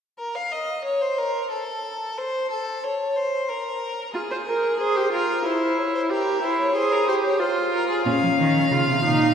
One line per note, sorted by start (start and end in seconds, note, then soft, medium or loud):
0.19 0.37 A#4 medium
0.35 0.53 F5 medium
0.52 0.84 D#5 medium
0.85 1.03 C#5 medium
1.02 1.20 C5 medium
1.19 1.51 A#4 medium
1.52 2.19 A4 medium
2.18 2.50 C5 medium
2.51 2.85 A4 medium
2.84 3.18 C#5 medium
3.16 3.50 C5 medium
3.49 4.14 A#4 medium
4.14 4.21 F4 medium
4.14 4.82 G#4 medium
4.31 4.37 C5 medium
4.47 4.79 A#4 medium
4.80 4.97 G#4 medium
4.80 5.12 C5 medium
4.96 5.12 G4 medium
5.12 5.44 F4 medium
5.12 5.47 A#4 medium
5.45 6.12 E4 medium
5.45 5.80 C5 medium
5.78 5.94 C#5 medium
5.95 6.01 C5 medium
6.10 6.42 G4 medium
6.10 6.45 A#4 medium
6.43 6.75 E4 medium
6.43 6.59 C5 medium
6.59 6.77 C#5 medium
6.75 7.09 G#4 medium
6.75 6.94 C5 medium
6.92 7.07 A#4 medium
7.08 7.42 G4 medium
7.08 7.15 C5 medium
7.24 7.40 C#5 medium
7.40 8.07 F4 medium
7.40 7.72 C5 medium
7.73 7.89 A#4 medium
7.89 8.05 G#4 medium
8.05 8.12 A#2 medium
8.05 8.71 C#4 medium
8.05 9.34 F5 medium
8.22 8.28 F3 medium
8.38 8.70 D#3 medium
8.71 8.77 C#3 medium
8.71 9.03 F4 medium
8.87 9.03 C3 medium
9.03 9.34 A#2 medium
9.03 9.34 D#4 medium